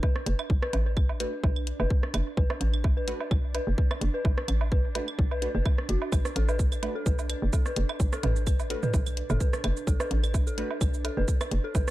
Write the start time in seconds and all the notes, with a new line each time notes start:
Already playing: D4
0.03 B4, kick, low woodblock
0.16 cross-stick
0.26 F#1 B4, closed hi-hat
0.39 claves, low woodblock
0.50 B1, kick
0.62 B4, cross-stick
0.73 A1, closed hi-hat, low woodblock
0.86 B4
0.97 kick, claves
1.09 low woodblock
1.20 A3 D4 F#4 B4, closed hi-hat
1.44 B1 B4, kick, low woodblock
1.56 claves
1.67 closed hi-hat
1.80 F#1 B4, low woodblock
1.90 kick
2.03 B4, cross-stick
2.14 F#1, closed hi-hat, claves, low woodblock
2.37 B1 B4, kick
2.50 cross-stick, low woodblock
2.61 A1 B4, closed hi-hat
2.74 claves
2.84 kick, low woodblock
2.97 B4
3.08 A3 D4 F#4 B4, closed hi-hat
3.20 B4, low woodblock
3.31 B1, kick, claves
3.54 B4, closed hi-hat, low woodblock
3.67 F#1
3.78 B4, kick
3.91 cross-stick, claves, low woodblock
4.01 F#1, closed hi-hat
4.14 B4
4.25 B1, kick, low woodblock
4.37 B4, cross-stick
4.48 A1, closed hi-hat, claves
4.61 low woodblock
4.72 B4, kick
4.95 A3 D4 F#4 B4, closed hi-hat, low woodblock
5.08 claves
5.19 B1, kick
5.31 B4, low woodblock
5.42 A3 D4 F#4 B4, closed hi-hat
5.55 F#1 B4
5.65 kick, claves, low woodblock
5.78 cross-stick
5.89 F#1 F#4, closed hi-hat
6.02 low woodblock
6.12 B1 B4, kick, cabasa, claves, low woodblock
6.25 cross-stick, cabasa
6.36 A1 A4, closed hi-hat
6.49 B4, cabasa, low woodblock
6.59 kick, cabasa
6.72 B4, cabasa, claves
6.83 A3 D4 F#4 B4, closed hi-hat, low woodblock
6.95 A4
7.06 B1 B4, kick, cabasa
7.19 cabasa, low woodblock
7.29 B4, closed hi-hat, claves
7.42 F#1
7.53 A4, kick, cabasa, low woodblock
7.66 B4, cross-stick, cabasa
7.76 F#1, closed hi-hat
7.89 B4, claves, low woodblock
8.00 B1, kick, cabasa
8.12 A4, cross-stick, cabasa
8.23 A1 B4, closed hi-hat, mid tom, low woodblock
8.36 cabasa
8.47 B4, kick, cabasa, claves
8.59 cabasa, low woodblock
8.70 A3 D4 F#4 A4 B4, closed hi-hat
8.83 B4, mid tom, cabasa
8.94 B1, kick, cabasa, low woodblock
9.06 B4, cabasa, claves
9.17 closed hi-hat
9.30 F#1 A4, mid tom, cabasa, low woodblock
9.40 B4, kick, cabasa
9.53 cross-stick, cabasa
9.64 F#1 B4, closed hi-hat, claves, low woodblock
9.77 cabasa
9.87 B1 A4, kick, cabasa
10.00 B4, cross-stick, cabasa, low woodblock
10.11 A1, closed hi-hat
10.24 B4, cabasa, claves
10.34 kick, cabasa, low woodblock
10.47 A4, cabasa
10.58 A3 D4 F#4 B4, closed hi-hat
10.71 low woodblock
10.81 B1 B4, kick, cabasa, claves
10.94 cabasa
11.04 A4, closed hi-hat, low woodblock
11.17 F#1 B4
11.28 kick, cabasa
11.41 B4, cross-stick, cabasa, claves, low woodblock
11.51 F#1, closed hi-hat
11.64 A4
11.75 B1 B4, kick, cabasa, low woodblock